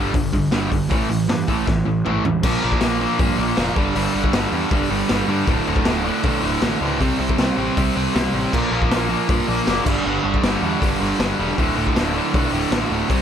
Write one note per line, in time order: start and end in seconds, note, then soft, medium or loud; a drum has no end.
0.00 0.12 G2 medium
0.00 0.12 D3 loud
0.00 0.13 G3 medium
0.14 0.29 G1 medium
0.14 0.31 G2 medium
0.14 0.31 D3 medium
0.14 kick loud
0.14 open hi-hat medium
0.33 0.48 G1 medium
0.33 0.50 G2 medium
0.33 0.50 D3 medium
0.33 kick medium
0.33 open hi-hat soft
0.51 0.68 G1 medium
0.51 0.69 G2 medium
0.51 0.70 D3 medium
0.51 0.70 G3 loud
0.51 snare loud
0.51 open hi-hat medium
0.72 0.86 G1 loud
0.72 0.88 G2 medium
0.72 0.89 D3 medium
0.72 kick medium
0.72 open hi-hat medium
0.90 1.06 A1 loud
0.90 1.08 A2 medium
0.90 1.08 E3 medium
0.90 1.09 A3 medium
0.90 kick loud
0.90 open hi-hat medium
1.10 1.25 A1 medium
1.10 1.27 A2 medium
1.10 1.27 E3 medium
1.10 open hi-hat soft
1.29 1.44 G2 loud
1.29 1.46 A2 medium
1.29 1.46 E3 medium
1.29 snare loud
1.29 open hi-hat medium
1.47 1.63 A1 medium
1.47 1.65 A2 loud
1.47 1.65 E3 medium
1.47 1.66 A3 loud
1.47 kick medium
1.47 open hi-hat soft
1.67 1.82 A1 medium
1.67 1.84 A2 medium
1.67 1.84 E3 medium
1.67 kick loud
1.67 snare medium
1.85 2.01 A1 medium
1.85 2.03 A2 medium
1.85 2.03 E3 medium
2.05 2.21 A1 medium
2.05 2.23 A2 medium
2.05 2.23 E3 medium
2.05 2.23 A3 medium
2.05 mid tom medium
2.25 2.40 A1 medium
2.25 2.41 A2 medium
2.25 2.42 E3 medium
2.25 floor tom medium
2.43 2.55 A#1 medium
2.43 2.60 A#2 medium
2.43 2.61 F3 loud
2.43 2.61 A#3 loud
2.43 kick loud
2.43 crash loud
2.61 2.75 A#1 medium
2.61 2.79 A#2 medium
2.61 2.80 F3 medium
2.61 2.81 A#3 medium
2.72 kick medium
2.81 3.05 A#1 loud
2.81 2.99 A#2 loud
2.81 3.00 F3 medium
2.81 3.00 A#3 loud
2.81 snare loud
2.81 open hi-hat medium
3.00 3.18 A#2 medium
3.00 3.18 F3 medium
3.00 3.18 A#3 loud
3.19 3.31 G2 medium
3.19 3.37 A#2 medium
3.19 3.38 F3 loud
3.19 3.38 A#3 loud
3.19 kick loud
3.19 open hi-hat medium
3.38 3.50 A#1 medium
3.38 3.56 A#2 medium
3.38 3.57 F3 medium
3.38 3.57 A#3 medium
3.57 3.69 F1 loud
3.57 3.75 A#2 medium
3.57 3.75 F3 loud
3.57 3.76 A#3 loud
3.57 snare loud
3.57 open hi-hat medium
3.76 3.88 G1 medium
3.76 3.94 G2 loud
3.76 3.94 D3 loud
3.76 3.95 G3 loud
3.76 kick loud
3.95 4.07 G1 loud
3.95 4.13 G2 loud
3.95 4.13 D3 loud
3.95 4.14 G3 loud
3.95 open hi-hat medium
4.14 4.26 G1 medium
4.14 4.32 G2 medium
4.14 4.32 D3 medium
4.14 4.33 G3 medium
4.24 kick medium
4.33 4.46 G1 loud
4.33 4.52 G2 medium
4.33 4.53 D3 loud
4.33 4.53 G3 loud
4.33 snare loud
4.33 open hi-hat medium
4.52 4.64 E2 medium
4.52 4.71 G2 medium
4.52 4.71 D3 loud
4.52 4.72 G3 loud
4.71 4.83 G1 loud
4.71 4.90 G2 loud
4.71 4.90 D3 loud
4.71 4.90 G3 loud
4.71 kick loud
4.71 open hi-hat medium
4.91 5.02 G1 medium
4.91 5.09 G2 medium
4.91 5.09 D3 loud
4.91 5.09 G3 medium
5.09 5.22 G1 loud
5.09 5.27 G2 loud
5.09 5.28 D3 loud
5.09 5.28 G3 loud
5.09 snare loud
5.09 open hi-hat medium
5.28 5.40 G2 loud
5.28 5.47 G2 medium
5.28 5.47 D3 medium
5.28 5.47 G3 loud
5.47 5.59 D1 loud
5.47 5.66 D2 loud
5.47 5.66 A2 loud
5.47 5.67 D3 loud
5.47 kick loud
5.47 open hi-hat medium
5.67 5.79 D1 medium
5.67 5.85 D2 medium
5.67 5.85 A2 medium
5.67 5.85 D3 loud
5.76 kick medium
5.85 6.10 D1 medium
5.85 6.03 D2 loud
5.85 6.04 A2 loud
5.85 6.04 D3 loud
5.85 snare loud
5.85 open hi-hat medium
6.05 6.22 D2 loud
6.05 6.22 A2 medium
6.05 6.23 D3 loud
6.23 6.36 B1 medium
6.23 6.41 D2 loud
6.23 6.42 A2 medium
6.23 6.42 D3 loud
6.23 kick loud
6.23 open hi-hat medium
6.42 6.55 D1 medium
6.42 6.60 D2 medium
6.42 6.61 A2 medium
6.42 6.61 D3 loud
6.62 6.74 A1 loud
6.62 6.80 D2 loud
6.62 6.81 A2 loud
6.62 6.81 D3 loud
6.62 snare loud
6.62 open hi-hat medium
6.81 7.01 C#2 loud
6.81 6.99 D2 medium
6.81 7.00 A2 loud
6.81 7.00 D3 medium
7.00 7.12 C2 loud
7.00 7.18 C3 loud
7.00 7.18 G3 loud
7.00 7.19 C4 loud
7.00 kick loud
7.00 open hi-hat medium
7.19 7.31 C2 medium
7.19 7.38 C3 medium
7.19 7.38 G3 loud
7.19 7.39 C4 loud
7.29 kick medium
7.38 7.50 C2 loud
7.38 7.56 C3 medium
7.38 7.57 G3 loud
7.38 7.57 C4 loud
7.38 snare loud
7.38 open hi-hat medium
7.57 7.69 A1 medium
7.57 7.76 C3 medium
7.57 7.76 G3 loud
7.57 7.77 C4 medium
7.77 7.89 C2 medium
7.77 7.95 C3 loud
7.77 7.95 G3 loud
7.77 7.96 C4 loud
7.77 kick loud
7.77 open hi-hat medium
7.96 8.08 C2 medium
7.96 8.13 C3 medium
7.96 8.14 G3 medium
7.96 8.14 C4 medium
8.14 8.27 C2 medium
8.14 8.32 C3 medium
8.14 8.33 G3 loud
8.14 8.33 C4 loud
8.14 snare loud
8.14 open hi-hat medium
8.33 8.45 A1 medium
8.33 8.52 C3 medium
8.33 8.52 G3 medium
8.33 8.52 C4 medium
8.53 8.65 A#1 loud
8.53 8.71 A#2 loud
8.53 8.71 F3 loud
8.53 8.72 A#3 loud
8.53 kick loud
8.53 crash loud
8.71 8.83 A#1 medium
8.71 8.91 A#2 medium
8.71 8.91 F3 medium
8.71 8.92 A#3 medium
8.82 kick medium
8.90 9.14 A#1 loud
8.90 9.09 A#2 medium
8.90 9.10 F3 loud
8.90 9.10 A#3 loud
8.90 snare loud
8.90 open hi-hat medium
9.10 9.27 A#2 loud
9.10 9.28 F3 medium
9.10 9.29 A#3 loud
9.29 9.41 G2 medium
9.29 9.47 A#2 loud
9.29 9.47 F3 loud
9.29 9.48 A#3 loud
9.29 kick loud
9.29 open hi-hat medium
9.48 9.60 A#1 medium
9.48 9.66 A#2 medium
9.48 9.67 F3 medium
9.48 9.67 A#3 loud
9.67 9.79 F#1 loud
9.67 9.85 A#2 medium
9.67 9.86 F3 loud
9.67 9.86 A#3 loud
9.67 snare loud
9.67 open hi-hat medium
9.86 9.98 G1 medium
9.86 10.04 G2 medium
9.86 10.05 D3 loud
9.86 10.05 G3 loud
9.86 kick loud
9.86 crash loud
10.05 10.18 G1 loud
10.05 10.23 G2 loud
10.05 10.23 D3 loud
10.05 10.24 G3 loud
10.24 10.36 G1 medium
10.24 10.41 G2 medium
10.24 10.42 D3 medium
10.24 10.42 G3 loud
10.34 kick medium
10.42 10.55 G1 medium
10.42 10.61 G2 loud
10.42 10.61 D3 loud
10.42 10.62 G3 loud
10.42 snare loud
10.42 open hi-hat medium
10.62 10.74 E2 loud
10.62 10.79 G2 medium
10.62 10.80 D3 loud
10.62 10.80 G3 loud
10.80 10.93 G1 loud
10.80 10.99 G2 loud
10.80 11.00 D3 loud
10.80 11.00 G3 loud
10.80 kick loud
10.80 open hi-hat medium
11.00 11.13 G1 medium
11.00 11.18 G2 medium
11.00 11.19 D3 medium
11.00 11.19 G3 medium
11.19 11.31 G1 loud
11.19 11.37 G2 loud
11.19 11.38 D3 loud
11.19 11.38 G3 loud
11.19 snare loud
11.19 open hi-hat medium
11.38 11.51 E1 loud
11.38 11.56 G2 medium
11.38 11.57 D3 loud
11.38 11.57 G3 loud
11.58 11.70 D1 loud
11.58 11.75 D2 loud
11.58 11.76 A2 loud
11.58 11.77 D3 loud
11.58 kick loud
11.58 open hi-hat medium
11.76 11.88 D1 medium
11.76 11.95 D2 medium
11.76 11.96 A2 medium
11.76 11.96 D3 medium
11.87 kick medium
11.95 12.19 D1 loud
11.95 12.14 D2 loud
11.95 12.15 A2 loud
11.95 12.15 D3 loud
11.95 snare loud
11.95 open hi-hat medium
12.15 12.32 D2 medium
12.15 12.32 A2 loud
12.15 12.33 D3 loud
12.33 12.46 B1 loud
12.33 12.51 D2 loud
12.33 12.52 A2 loud
12.33 12.52 D3 loud
12.33 kick loud
12.33 open hi-hat medium
12.52 12.64 D1 medium
12.52 12.71 D2 medium
12.52 12.71 A2 medium
12.52 12.71 D3 loud
12.71 12.83 A1 loud
12.71 12.90 D2 loud
12.71 12.91 A2 loud
12.71 12.91 D3 loud
12.71 snare loud
12.71 open hi-hat medium
12.90 13.02 D1 medium
12.90 13.09 D2 loud
12.90 13.09 A2 medium
12.90 13.09 D3 medium
13.10 13.21 C2 loud
13.10 13.22 C3 loud
13.10 13.22 G3 loud
13.10 13.22 C4 loud
13.10 kick loud
13.10 open hi-hat medium